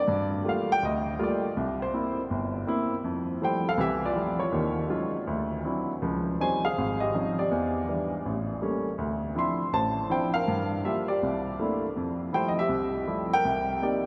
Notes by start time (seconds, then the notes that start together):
Already playing: D5
0.08 G2
0.44 G3 A3 A#3 F4
0.49 F5
0.72 G5
0.83 D2 D#5
1.19 G3 A3 A#3 F4
1.23 D5
1.57 C2
1.82 C5
1.93 A#3 C4 E4
2.30 G1
2.67 A#3 C4 E4
3.04 F2
3.41 F3 G3 A3 E4 C5 G5
3.68 A4 F5
3.77 C2 E3 G4 E5
4.06 F4 D5
4.15 F3 G3 A3 E4
4.39 F4 C#5
4.52 D#2 D#3
4.89 F#3 G#3 C#4 D#4 F4
5.27 D2
5.65 F#3 C4 D4 E4
6.02 C#2 F3
6.39 F3 G3 C4 C#4 D#4 C5 G#5
6.65 G#4 F5
6.78 G#1
7.00 G4 D#5
7.14 F3 G3 C4 C#4 D#4
7.39 G4 D5
7.51 E2
7.88 E3 G3 D4
8.26 A1
8.62 G3 A3 A#3 C#4
8.98 D2
9.35 F3 C4 D4 E4 E5
9.39 C6
9.73 A1 C5 A5
10.09 F3 C4 D4 E4 C5 G5
10.34 A#4 F5
10.48 G2
10.84 G3 A#3 F4 G4 E5
11.08 G4 D5
11.23 C2
11.60 A3 A#3 C4 D4 E4
11.96 F2
12.33 F3 G3 A3 E4 C5 G5
12.48 D#5
12.59 G4 E5
12.69 C2
13.07 F3 G3 A3 E4
13.33 A#4 G5
13.45 C2
13.82 A#3 C4 D#4 G4 D5